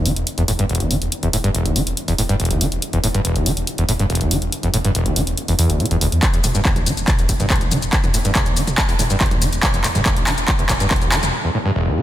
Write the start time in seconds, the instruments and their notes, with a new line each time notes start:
0.06 detuned saw bass E1, acid bass E3, open hi-hat
0.16 detuned saw bass E1, closed hi-hat
0.27 closed hi-hat
0.38 detuned saw bass E1, acid bass E2, closed hi-hat
0.48 detuned saw bass E1, acid bass A2, open hi-hat
0.59 detuned saw bass E1, acid bass G2, closed hi-hat
0.69 acid bass E1, closed hi-hat
0.75 closed hi-hat
0.80 detuned saw bass E1, acid bass E2, closed hi-hat
0.90 detuned saw bass E1, acid bass E3, open hi-hat
1.02 detuned saw bass E1, closed hi-hat
1.12 closed hi-hat
1.23 detuned saw bass E1, acid bass E2, closed hi-hat
1.33 detuned saw bass E1, acid bass A2, open hi-hat
1.44 detuned saw bass E1, acid bass G2, closed hi-hat
1.54 acid bass E1, closed hi-hat
1.65 detuned saw bass E1, acid bass E2, closed hi-hat
1.76 detuned saw bass E1, acid bass E3, open hi-hat
1.87 detuned saw bass E1, closed hi-hat
1.97 closed hi-hat
2.08 detuned saw bass E1, acid bass E2, open hi-hat
2.18 detuned saw bass E1, acid bass A2, open hi-hat
2.29 detuned saw bass E1, acid bass G2, closed hi-hat
2.40 acid bass E1, closed hi-hat
2.45 closed hi-hat
2.51 detuned saw bass E1, acid bass E2, closed hi-hat
2.61 detuned saw bass E1, acid bass E3, open hi-hat
2.72 detuned saw bass E1, closed hi-hat
2.82 closed hi-hat
2.93 detuned saw bass E1, acid bass E2, closed hi-hat
3.03 detuned saw bass E1, acid bass A2, open hi-hat
3.14 detuned saw bass E1, acid bass G2, closed hi-hat
3.25 acid bass E1, closed hi-hat
3.36 detuned saw bass E1, acid bass E2, closed hi-hat
3.46 detuned saw bass E1, acid bass E3, open hi-hat
3.57 detuned saw bass E1, closed hi-hat
3.67 closed hi-hat
3.78 detuned saw bass E1, acid bass E2, closed hi-hat
3.89 detuned saw bass E1, acid bass A2, open hi-hat
3.99 detuned saw bass E1, acid bass G2, closed hi-hat
4.10 acid bass E1, closed hi-hat
4.15 closed hi-hat
4.21 detuned saw bass E1, acid bass E2, closed hi-hat
4.31 detuned saw bass E1, acid bass E3, open hi-hat
4.42 detuned saw bass E1, closed hi-hat
4.52 closed hi-hat
4.63 detuned saw bass E1, acid bass E2, closed hi-hat
4.74 detuned saw bass E1, acid bass A2, open hi-hat
4.85 detuned saw bass E1, acid bass G2, closed hi-hat
4.95 acid bass E1, closed hi-hat
5.06 detuned saw bass E1, acid bass E2, closed hi-hat
5.16 detuned saw bass E1, acid bass E3, open hi-hat
5.27 detuned saw bass E1, closed hi-hat
5.37 closed hi-hat
5.48 detuned saw bass E1, acid bass E2, open hi-hat
5.59 detuned saw bass E2, acid bass E2, open hi-hat
5.70 detuned saw bass E1, acid bass D2, closed hi-hat
5.80 acid bass B2, closed hi-hat
5.86 closed hi-hat
5.91 detuned saw bass E1, acid bass E2, closed hi-hat
6.01 detuned saw bass E1, acid bass D2, open hi-hat
6.12 detuned saw bass E2, closed hi-hat
6.23 kick, clap, closed hi-hat, shaker
6.33 detuned saw bass E1, acid bass E2, closed hi-hat, shaker
6.44 detuned saw bass E1, acid bass A2, mid tom, open hi-hat, shaker
6.55 detuned saw bass E1, acid bass G2, closed hi-hat, shaker
6.65 acid bass E1, kick, clap, closed hi-hat, shaker
6.76 detuned saw bass E1, acid bass E2, closed hi-hat, mid tom, shaker
6.86 detuned saw bass E1, acid bass E3, open hi-hat, shaker
6.97 detuned saw bass E1, closed hi-hat, shaker
7.08 kick, clap, closed hi-hat, mid tom, shaker
7.19 detuned saw bass E1, acid bass E2, closed hi-hat, shaker
7.29 detuned saw bass E1, acid bass A2, kick, open hi-hat, shaker
7.40 detuned saw bass E1, acid bass G2, closed hi-hat, mid tom, shaker
7.50 acid bass E1, kick, clap, closed hi-hat, shaker
7.56 closed hi-hat
7.61 detuned saw bass E1, acid bass E2, closed hi-hat, shaker
7.71 detuned saw bass E1, acid bass E3, mid tom, open hi-hat, shaker
7.82 detuned saw bass E1, closed hi-hat, shaker
7.93 kick, clap, closed hi-hat, shaker
8.04 detuned saw bass E1, acid bass E2, closed hi-hat, mid tom, shaker
8.14 detuned saw bass E1, acid bass A2, open hi-hat, shaker
8.25 detuned saw bass E1, acid bass G2, closed hi-hat, shaker
8.35 acid bass E1, kick, clap, closed hi-hat, mid tom, shaker
8.46 detuned saw bass E1, acid bass E2, closed hi-hat, shaker
8.57 detuned saw bass E1, acid bass E3, open hi-hat, shaker
8.67 detuned saw bass E1, closed hi-hat, mid tom, shaker
8.78 kick, clap, closed hi-hat, shaker
8.89 detuned saw bass E1, acid bass E2, open hi-hat, shaker
8.99 detuned saw bass E1, acid bass A2, mid tom, open hi-hat, shaker
9.10 detuned saw bass E1, acid bass G2, closed hi-hat, shaker
9.21 acid bass E1, kick, clap, closed hi-hat, shaker
9.26 closed hi-hat
9.31 detuned saw bass E1, acid bass E2, closed hi-hat, mid tom, shaker
9.42 detuned saw bass E1, acid bass E3, open hi-hat, shaker
9.53 detuned saw bass E1, closed hi-hat, shaker
9.63 kick, clap, closed hi-hat, mid tom, shaker
9.74 detuned saw bass E1, acid bass E2, closed hi-hat, shaker
9.84 detuned saw bass E1, acid bass A2, clap, open hi-hat, shaker
9.95 detuned saw bass E1, acid bass G2, closed hi-hat, mid tom, shaker
10.06 acid bass E1, kick, clap, closed hi-hat, shaker
10.16 detuned saw bass E1, acid bass E2, closed hi-hat, shaker
10.27 detuned saw bass E1, acid bass E3, clap, mid tom, open hi-hat, shaker
10.38 detuned saw bass E1, closed hi-hat, shaker
10.48 kick, clap, closed hi-hat, shaker
10.59 detuned saw bass E1, acid bass E2, closed hi-hat, mid tom, shaker
10.69 detuned saw bass E1, acid bass A2, kick, clap, open hi-hat, shaker
10.80 detuned saw bass E1, acid bass G2, closed hi-hat, shaker
10.91 acid bass E1, kick, clap, closed hi-hat, mid tom, shaker
10.96 closed hi-hat
11.02 detuned saw bass E1, acid bass E2, closed hi-hat, shaker
11.12 detuned saw bass E1, acid bass E3, clap, open hi-hat, shaker
11.23 detuned saw bass E1, closed hi-hat, mid tom, shaker
11.44 acid bass E2
11.54 acid bass A2
11.65 acid bass G2
11.76 acid bass E1
11.87 acid bass E2
11.97 acid bass E3